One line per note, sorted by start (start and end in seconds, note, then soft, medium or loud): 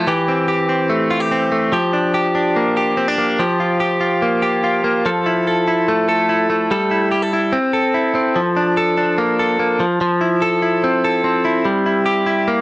0.00 0.12 A3 soft
0.00 0.13 E4 medium
0.07 1.72 E3 medium
0.07 0.48 G4 medium
0.28 0.68 C4 medium
0.48 1.10 G4 medium
0.69 1.30 C4 medium
0.90 1.51 A3 medium
1.11 1.20 F4 medium
1.20 1.72 G4 soft
1.31 1.77 C4 medium
1.52 1.77 A3 medium
1.72 3.39 F3 medium
1.72 2.14 G4 medium
1.93 2.34 D4 medium
2.14 2.76 G4 medium
2.35 2.97 D4 medium
2.56 3.17 A#3 medium
2.77 3.39 G4 medium
2.97 3.08 C4 medium
3.08 3.43 D4 soft
3.18 3.43 A#3 medium
3.39 5.04 F3 medium
3.39 3.79 G4 medium
3.60 4.00 F4 medium
3.80 4.41 G4 medium
4.01 4.63 F4 medium
4.22 4.83 A#3 medium
4.42 5.05 G4 medium
4.64 5.09 F4 medium
4.84 5.09 A#3 medium
5.06 6.71 F3 medium
5.06 5.47 A4 medium
5.26 5.67 E4 medium
5.47 6.08 A4 medium
5.68 6.29 E4 medium
5.88 6.49 A3 medium
6.09 6.71 A4 medium
6.29 6.74 E4 medium
6.50 7.14 A3 medium
6.71 7.57 G3 medium
6.71 7.11 A4 medium
6.91 7.32 E4 medium
7.11 7.22 G4 medium
7.22 7.57 A4 soft
7.33 7.57 E4 medium
7.53 8.14 C4 medium
7.73 8.77 A4 medium
7.94 8.40 E4 soft
8.15 8.40 C4 medium
8.36 9.79 F3 medium
8.56 8.96 D4 medium
8.77 9.39 A4 medium
8.97 9.84 D4 medium
9.18 9.58 A#3 medium
9.39 9.84 A4 medium
9.59 9.84 A#3 medium
9.80 10.00 F3 medium
10.01 11.65 F3 medium
10.21 10.62 E4 medium
10.42 11.03 A4 medium
10.62 11.44 E4 medium
10.84 11.24 C4 medium
11.04 11.70 A4 medium
11.24 12.47 C4 medium
11.45 11.86 E4 medium
11.65 12.61 G3 medium
11.86 12.25 E4 medium
12.06 12.61 G4 medium
12.26 12.61 E4 medium
12.48 12.61 A#3 medium